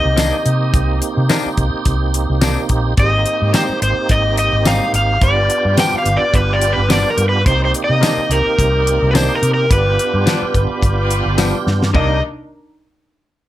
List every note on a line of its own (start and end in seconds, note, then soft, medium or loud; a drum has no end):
0.00 2.94 A#3 medium
0.00 2.94 C4 medium
0.00 2.94 D#4 medium
0.00 2.94 G4 medium
0.00 0.98 D#5 medium
0.05 0.31 C2 medium
0.17 0.35 C3 medium
0.17 0.36 D#3 medium
0.17 0.36 A#3 medium
0.17 0.36 D4 medium
0.17 snare loud
0.17 closed hi-hat medium
0.17 tambourine loud
0.46 0.72 C3 medium
0.46 closed hi-hat medium
0.74 1.00 C2 medium
0.74 kick loud
0.74 closed hi-hat medium
1.02 closed hi-hat medium
1.17 1.29 C3 medium
1.29 1.48 C3 medium
1.29 1.48 D#3 medium
1.29 1.48 A#3 medium
1.29 1.48 D4 medium
1.29 snare loud
1.29 closed hi-hat medium
1.29 tambourine loud
1.46 muted fingered electric bass stroke soft
1.57 1.72 C2 medium
1.57 kick medium
1.57 closed hi-hat medium
1.85 2.26 C2 medium
1.85 kick medium
1.85 closed hi-hat medium
2.14 closed hi-hat medium
2.30 2.55 C2 medium
2.41 2.60 C3 medium
2.41 2.60 D#3 medium
2.41 2.60 A#3 medium
2.41 2.61 D4 medium
2.41 snare loud
2.41 closed hi-hat medium
2.41 tambourine loud
2.69 2.96 A#1 medium
2.69 kick medium
2.69 closed hi-hat medium
2.97 3.24 G#1 medium
2.97 5.18 A#3 medium
2.97 5.18 C4 medium
2.97 5.18 D#4 medium
2.97 3.20 G4 medium
2.97 5.19 G4 medium
2.97 3.20 G#4 medium
2.97 3.20 C5 medium
2.97 3.51 D#5 medium
2.97 kick loud
2.97 closed hi-hat medium
3.26 closed hi-hat medium
3.41 3.53 G#2 medium
3.41 3.81 G4 medium
3.41 3.82 C5 medium
3.53 3.72 G#2 medium
3.53 3.72 G3 medium
3.53 3.72 C4 medium
3.53 3.73 D#4 medium
3.53 3.82 C5 medium
3.53 snare medium
3.53 closed hi-hat medium
3.53 tambourine loud
3.69 muted fingered electric bass stroke soft
3.82 3.96 G#1 medium
3.82 4.11 C5 medium
3.82 closed hi-hat medium
4.09 4.50 G#1 medium
4.09 4.38 D#5 medium
4.09 kick medium
4.09 closed hi-hat medium
4.25 4.73 G4 medium
4.25 4.74 D#5 medium
4.37 4.65 D#5 medium
4.37 closed hi-hat medium
4.53 4.79 G#1 medium
4.65 4.84 G#2 medium
4.65 4.84 G3 medium
4.65 4.84 C4 medium
4.65 4.85 D#4 medium
4.65 4.94 F5 medium
4.65 snare loud
4.65 closed hi-hat medium
4.65 tambourine loud
4.93 5.19 G#1 medium
4.93 5.21 F5 medium
4.93 closed hi-hat medium
5.20 5.48 G1 medium
5.20 7.42 B3 medium
5.20 7.42 D4 medium
5.20 5.43 F4 medium
5.20 7.42 F4 medium
5.20 5.43 G4 medium
5.20 7.43 G4 medium
5.20 5.43 B4 medium
5.20 5.75 D5 medium
5.20 kick loud
5.20 closed hi-hat medium
5.50 closed hi-hat medium
5.65 5.77 G2 medium
5.65 6.06 F4 medium
5.65 6.06 G4 medium
5.65 6.07 B4 medium
5.77 5.96 G2 medium
5.77 5.96 F3 medium
5.77 5.97 B3 medium
5.77 5.97 D4 medium
5.77 5.98 G5 loud
5.77 snare loud
5.77 closed hi-hat medium
5.77 tambourine loud
5.94 muted fingered electric bass stroke soft
5.99 6.17 F5 medium
6.06 6.20 G1 medium
6.06 closed hi-hat medium
6.17 6.35 D5 medium
6.34 6.74 G1 medium
6.34 6.54 B4 medium
6.34 kick medium
6.34 closed hi-hat medium
6.49 6.98 F4 medium
6.49 6.98 G4 medium
6.49 6.98 B4 medium
6.49 6.72 D5 medium
6.62 closed hi-hat medium
6.73 6.91 B4 medium
6.77 7.03 G1 medium
6.89 7.08 G2 medium
6.89 7.08 F3 medium
6.89 7.08 B3 medium
6.89 7.09 D4 medium
6.89 7.08 D5 medium
6.89 snare loud
6.89 closed hi-hat medium
6.89 tambourine loud
7.10 7.29 A#4 medium
7.18 7.44 G2 medium
7.18 closed hi-hat medium
7.29 7.47 B4 medium
7.45 7.72 C2 medium
7.45 9.66 A#3 medium
7.45 9.67 C4 medium
7.45 7.67 D#4 medium
7.45 9.66 D#4 medium
7.45 9.67 G4 medium
7.45 7.67 A#4 medium
7.45 7.64 C5 medium
7.45 7.68 D5 medium
7.45 kick loud
7.45 closed hi-hat medium
7.65 7.70 C5 medium
7.74 closed hi-hat medium
7.84 8.32 D#5 medium
7.88 8.01 C3 medium
7.88 8.29 A#4 medium
7.88 8.30 D#5 medium
8.01 8.20 C3 medium
8.01 8.20 D#3 medium
8.01 8.20 A#3 medium
8.01 8.21 D4 medium
8.01 snare loud
8.01 closed hi-hat medium
8.01 tambourine medium
8.17 muted fingered electric bass stroke soft
8.29 8.44 C2 medium
8.29 9.13 A#4 medium
8.29 closed hi-hat medium
8.46 muted fingered electric bass stroke soft
8.59 8.99 C2 medium
8.59 kick medium
8.59 closed hi-hat medium
8.73 9.21 A#4 medium
8.73 9.22 D5 medium
8.87 closed hi-hat medium
9.02 9.28 C2 medium
9.11 9.32 C3 medium
9.11 9.32 D#3 medium
9.11 9.15 B4 medium
9.15 9.33 A#3 medium
9.15 9.33 D4 medium
9.15 9.34 C5 medium
9.15 snare loud
9.15 closed hi-hat medium
9.15 tambourine loud
9.35 9.53 A#4 medium
9.42 9.68 C3 medium
9.42 closed hi-hat medium
9.54 9.72 A#4 medium
9.69 9.96 G1 medium
9.69 11.90 B3 medium
9.69 11.90 D4 medium
9.69 9.91 F4 medium
9.69 11.91 F4 medium
9.69 9.92 G4 medium
9.69 11.91 G4 medium
9.69 9.92 B4 medium
9.69 kick loud
9.69 closed hi-hat medium
9.73 11.35 B4 medium
9.99 closed hi-hat medium
10.14 10.25 G2 medium
10.14 10.54 F4 medium
10.14 10.55 G4 medium
10.14 10.55 B4 medium
10.26 10.44 G2 medium
10.26 10.45 F3 medium
10.26 10.45 B3 medium
10.26 10.45 D4 medium
10.26 snare loud
10.26 closed hi-hat medium
10.26 tambourine loud
10.42 muted fingered electric bass stroke soft
10.54 10.69 G1 medium
10.54 kick medium
10.54 closed hi-hat medium
10.70 muted fingered electric bass stroke soft
10.82 11.23 G1 medium
10.82 kick medium
10.82 closed hi-hat medium
10.97 11.46 F4 medium
10.97 11.46 G4 medium
10.97 11.46 B4 medium
11.11 closed hi-hat medium
11.26 11.52 G1 medium
11.38 11.56 G2 medium
11.38 11.56 F3 medium
11.38 11.57 B3 medium
11.38 11.57 D4 medium
11.38 snare loud
11.38 closed hi-hat medium
11.38 tambourine loud
11.67 11.92 G2 medium
11.67 snare medium
11.83 snare medium
11.94 12.20 C2 medium
11.94 12.17 C3 medium
11.94 12.17 D#3 medium
11.94 12.20 A#3 medium
11.94 12.18 A#3 medium
11.94 12.20 D4 medium
11.94 12.21 D4 medium
11.94 12.18 D4 medium
11.94 12.20 D#4 medium
11.94 12.20 G4 medium
11.94 12.20 A#4 medium
11.94 12.21 D#5 medium
11.94 kick loud
11.94 floor tom loud